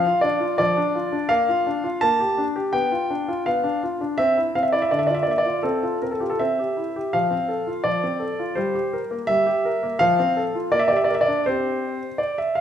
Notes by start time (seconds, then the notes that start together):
Already playing: F5
0.06 F4
0.21 D4 D5
0.40 F4
0.58 F3 D5
0.77 D4
0.95 F4
1.12 D4
1.29 A#3 F5
1.49 F4
1.67 D4
1.84 F4
2.01 A#3 A5
2.20 G4
2.38 D4
2.56 G4
2.73 B3 G5
2.92 F4
3.10 D4
3.28 F4
3.46 B3 F5
3.64 D4
3.83 F4
4.01 D4
4.18 C4 E5
4.37 E4
4.55 C4 F5
4.63 E5
4.72 E4 D5
4.82 E5
4.91 D3 D5
4.99 E5
5.07 F4 D5
5.14 E5
5.23 D5
5.27 A#3
5.31 E5
5.38 D5
5.45 F4
5.63 C4 A4
5.83 F4
6.02 C4 A#4
6.11 A4
6.20 F4 G4
6.30 A4
6.39 C4 E5
6.59 G4
6.77 E4
6.96 G4
7.13 F3 F5
7.30 C4
7.48 A4
7.67 F4
7.84 F3 D5
8.03 C4
8.20 A4
8.39 F4
8.55 G3 C5
8.75 G4
8.93 A#4
9.11 A#3
9.27 G3 E5
9.46 G4
9.65 A#4
9.83 A#3
9.99 F3 F5
10.19 C4
10.37 A4
10.55 F4
10.72 A#3 D5
10.79 E5
10.88 G4 D5
10.97 E5
11.04 D5
11.10 A#4
11.15 E5
11.21 D5
11.28 D4
11.46 C4 G4 C5
12.18 D5
12.38 E5
12.55 F5